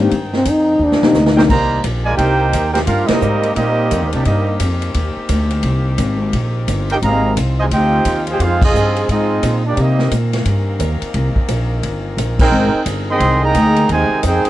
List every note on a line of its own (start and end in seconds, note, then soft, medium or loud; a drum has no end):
0.00 0.11 G#2 loud
0.00 0.10 D#3 medium
0.00 0.10 A#3 medium
0.00 0.10 C4 medium
0.00 0.11 D4 medium
0.00 0.10 F4 medium
0.00 0.11 G4 medium
0.00 1.32 A#4 medium
0.00 1.32 G5 medium
0.11 0.45 G2 medium
0.11 1.32 D#4 medium
0.11 1.32 C5 medium
0.11 kick soft
0.11 ride medium
0.33 0.52 C4 medium
0.33 snare medium
0.45 0.78 F2 medium
0.45 kick soft
0.45 hi-hat pedal medium
0.45 ride medium
0.51 0.85 D#4 medium
0.79 1.00 D#2 medium
0.84 1.07 D4 medium
0.92 snare medium
1.01 1.14 D#3 medium
1.01 1.14 A#3 medium
1.01 1.14 C4 medium
1.01 1.14 D4 medium
1.01 1.14 G4 medium
1.01 muted upright bass stroke soft
1.01 snare medium
1.06 1.45 D#4 medium
1.13 1.48 D2 loud
1.13 snare medium
1.13 hi-hat pedal medium
1.26 snare loud
1.36 1.48 D#3 medium
1.36 1.48 A#3 medium
1.36 1.43 A#3 medium
1.36 1.48 C4 medium
1.36 1.48 D4 medium
1.36 1.43 D#4 medium
1.36 1.43 G4 loud
1.36 1.48 A#4 medium
1.36 1.43 A#4 medium
1.36 1.44 C5 medium
1.36 1.43 G5 loud
1.36 snare loud
1.49 1.83 C2 medium
1.49 1.82 D#3 medium
1.49 1.81 G3 medium
1.49 1.82 A#3 medium
1.49 6.98 A#3 medium
1.49 9.60 C4 medium
1.49 9.60 D#4 medium
1.49 6.98 G4 medium
1.49 1.82 G4 medium
1.49 1.82 C5 loud
1.49 1.82 D#5 medium
1.49 1.82 A#5 loud
1.49 kick medium
1.49 crash medium
1.84 2.17 A#1 medium
1.84 kick soft
1.84 hi-hat pedal medium
1.84 ride medium
2.04 2.17 G#3 medium
2.04 2.18 F4 medium
2.04 2.16 A#4 medium
2.04 2.17 D5 medium
2.04 2.18 G#5 loud
2.15 2.52 C2 medium
2.15 2.69 A#3 medium
2.15 2.69 D#4 medium
2.15 2.70 D#4 loud
2.15 2.69 G4 medium
2.15 2.70 A#4 medium
2.15 2.70 C5 loud
2.15 2.70 G5 loud
2.15 kick soft
2.15 ride medium
2.53 2.87 D#2 medium
2.53 kick soft
2.53 hi-hat pedal medium
2.53 ride medium
2.73 2.79 A#3 medium
2.73 2.79 D#4 medium
2.73 2.80 D#4 medium
2.73 2.79 G4 medium
2.73 2.79 A#4 medium
2.73 2.80 C5 medium
2.73 2.80 G5 loud
2.73 snare medium
2.73 ride medium
2.85 3.08 G2 medium
2.85 3.08 D4 medium
2.85 3.07 F4 medium
2.85 3.07 G4 medium
2.85 3.06 A#4 medium
2.85 3.08 F5 medium
2.85 kick soft
2.85 ride medium
3.06 3.53 G3 medium
3.06 3.53 A#3 medium
3.06 3.56 C4 medium
3.06 3.53 D#4 medium
3.06 3.56 G4 loud
3.06 3.56 A#4 medium
3.06 3.56 D#5 loud
3.06 muted upright bass stroke soft
3.06 snare loud
3.06 ride medium
3.21 3.55 G#2 medium
3.21 hi-hat pedal medium
3.43 ride medium
3.54 3.90 A#2 medium
3.54 4.08 G3 medium
3.54 4.08 A#3 medium
3.54 4.09 C4 medium
3.54 4.08 D#4 medium
3.54 4.09 G4 medium
3.54 4.09 A#4 medium
3.54 4.09 D#5 loud
3.54 kick soft
3.54 ride medium
3.91 4.02 F2 loud
3.91 kick soft
3.91 hi-hat pedal medium
3.91 ride medium
4.02 4.13 D#2 medium
4.11 4.25 C2 medium
4.11 4.26 A#3 medium
4.11 4.25 D4 medium
4.11 4.26 D#4 medium
4.11 4.26 G4 medium
4.11 4.26 D5 medium
4.11 ride medium
4.25 4.59 G2 medium
4.25 4.58 G3 medium
4.25 4.57 A#3 medium
4.25 4.58 C4 medium
4.25 4.58 D#4 medium
4.25 4.59 G4 medium
4.25 4.59 A#4 medium
4.25 4.58 D#5 medium
4.25 kick soft
4.25 ride medium
4.60 4.94 F2 medium
4.60 kick soft
4.60 hi-hat pedal medium
4.60 ride medium
4.82 ride medium
4.94 5.15 D#2 loud
4.94 kick soft
4.94 ride medium
5.16 muted upright bass stroke soft
5.29 5.63 D2 medium
5.29 kick soft
5.29 hi-hat pedal medium
5.29 ride medium
5.51 ride medium
5.63 5.97 C2 medium
5.63 kick soft
5.63 ride medium
5.98 6.32 G#1 loud
5.98 kick soft
5.98 hi-hat pedal medium
5.98 ride medium
6.33 6.66 A#1 medium
6.33 kick soft
6.33 ride medium
6.68 7.01 G1 medium
6.68 kick soft
6.68 hi-hat pedal medium
6.68 ride medium
6.90 6.98 A#3 medium
6.90 6.97 D#4 medium
6.90 6.98 D#4 medium
6.90 6.98 G4 medium
6.90 6.97 A#4 medium
6.90 6.96 C5 medium
6.90 6.97 G5 loud
6.90 ride medium
7.01 7.35 G#1 medium
7.01 7.36 C3 loud
7.01 9.60 F3 medium
7.01 9.60 F4 medium
7.01 7.35 G#4 loud
7.01 7.35 D#5 medium
7.01 7.35 F5 medium
7.01 7.35 A#5 loud
7.01 kick soft
7.01 ride medium
7.05 7.36 D#3 medium
7.05 7.36 A#3 medium
7.36 7.70 C2 medium
7.36 kick soft
7.36 hi-hat pedal medium
7.36 ride medium
7.60 7.67 C3 medium
7.60 7.66 D#3 medium
7.60 7.67 G#3 medium
7.60 7.65 F4 medium
7.60 7.66 C5 medium
7.60 7.65 D#5 medium
7.60 7.66 G#5 loud
7.71 8.04 D2 medium
7.71 8.25 F4 medium
7.71 8.25 C5 medium
7.71 8.24 D#5 loud
7.71 8.24 G5 loud
7.71 kick soft
7.71 ride medium
7.76 8.26 C4 medium
7.76 8.25 D#4 medium
7.76 8.26 G4 medium
8.05 8.39 D#2 medium
8.05 kick soft
8.05 hi-hat pedal medium
8.05 ride medium
8.27 ride medium
8.31 8.41 D#4 medium
8.31 8.41 G4 medium
8.31 8.41 G#4 medium
8.31 8.41 C5 medium
8.31 8.41 G5 loud
8.39 8.73 F2 medium
8.39 8.63 G#3 medium
8.39 8.63 C4 medium
8.39 8.63 D#4 medium
8.39 8.63 F4 medium
8.39 8.63 G#4 medium
8.39 8.63 C5 medium
8.39 8.63 F5 medium
8.39 kick soft
8.39 ride medium
8.62 9.06 C4 medium
8.62 9.07 C4 medium
8.62 9.06 D#4 medium
8.62 9.07 F4 loud
8.62 9.07 G#4 medium
8.62 9.07 G#4 loud
8.62 9.07 D#5 loud
8.62 kick loud
8.62 crash medium
8.73 9.07 G2 loud
8.73 hi-hat pedal medium
8.96 ride medium
9.09 9.42 G#2 medium
9.09 9.62 G#3 medium
9.09 9.62 C4 medium
9.09 9.62 D#4 medium
9.09 9.62 F4 medium
9.09 9.62 G#4 medium
9.09 9.62 D#5 loud
9.09 kick soft
9.09 ride medium
9.43 9.76 A#2 loud
9.43 kick soft
9.43 hi-hat pedal medium
9.43 ride medium
9.65 9.78 A#3 medium
9.65 9.76 D4 medium
9.65 9.78 D#4 medium
9.65 9.78 G4 medium
9.65 9.78 D5 medium
9.77 10.10 C3 loud
9.77 12.49 D#3 medium
9.77 10.11 G3 medium
9.77 12.49 A#3 medium
9.77 10.12 A#3 medium
9.77 14.50 C4 medium
9.77 10.12 D#4 medium
9.77 14.50 A#4 medium
9.77 kick soft
9.77 ride medium
9.82 10.14 C4 medium
9.82 10.14 G4 medium
9.82 10.14 A#4 medium
9.82 10.14 D#5 medium
9.99 snare soft
10.11 10.45 A#2 medium
10.11 kick soft
10.11 hi-hat pedal medium
10.11 ride medium
10.33 snare soft
10.33 ride medium
10.45 10.79 G2 medium
10.45 kick soft
10.45 ride medium
10.79 11.00 D#2 loud
10.79 kick soft
10.79 hi-hat pedal medium
10.79 ride medium
11.02 muted upright bass stroke soft
11.02 ride medium
11.14 11.34 C2 loud
11.14 kick soft
11.14 ride medium
11.36 muted upright bass stroke soft
11.36 kick medium
11.48 11.82 A#1 medium
11.48 kick soft
11.48 hi-hat pedal medium
11.48 ride medium
11.83 12.16 G1 medium
11.83 kick soft
11.83 ride medium
12.17 12.51 A#1 medium
12.17 kick soft
12.17 hi-hat pedal medium
12.17 ride medium
12.39 12.83 C4 loud
12.39 12.83 D#4 loud
12.39 12.84 D#4 loud
12.39 12.84 G#4 medium
12.39 12.83 A#4 loud
12.39 12.84 C5 loud
12.39 12.84 G5 loud
12.39 kick loud
12.39 crash loud
12.52 12.72 G#1 loud
12.52 14.50 D#4 medium
12.52 14.50 G#4 medium
12.86 13.19 G1 medium
12.86 kick soft
12.86 hi-hat pedal medium
12.86 ride medium
13.10 13.41 D#3 medium
13.10 13.41 G#3 medium
13.10 13.41 C4 medium
13.10 13.42 G#4 loud
13.10 13.42 D#5 loud
13.10 13.42 G5 loud
13.10 13.42 C6 loud
13.20 13.54 C2 medium
13.20 kick soft
13.20 ride medium
13.43 13.90 G#3 medium
13.43 13.90 A#3 medium
13.43 13.90 D#4 medium
13.43 13.90 G#4 loud
13.43 13.91 D#5 loud
13.43 13.91 G5 loud
13.43 13.91 A#5 loud
13.55 13.88 D2 loud
13.55 kick soft
13.55 hi-hat pedal medium
13.55 ride medium
13.76 ride medium
13.89 14.09 D#2 medium
13.89 14.23 C3 medium
13.89 14.22 D#3 medium
13.89 14.23 G#3 medium
13.89 14.23 D#4 medium
13.89 14.23 C5 medium
13.89 14.23 G5 medium
13.89 14.23 G#5 loud
13.89 kick soft
13.89 ride medium
14.10 muted upright bass stroke soft
14.23 14.44 F2 medium
14.23 14.50 C4 medium
14.23 14.50 D#4 medium
14.23 14.50 G#4 medium
14.23 kick soft
14.23 hi-hat pedal medium
14.23 ride medium
14.27 14.50 D#4 medium
14.27 14.50 G#4 medium
14.27 14.50 C5 medium
14.27 14.50 G5 loud
14.45 muted upright bass stroke soft
14.45 ride medium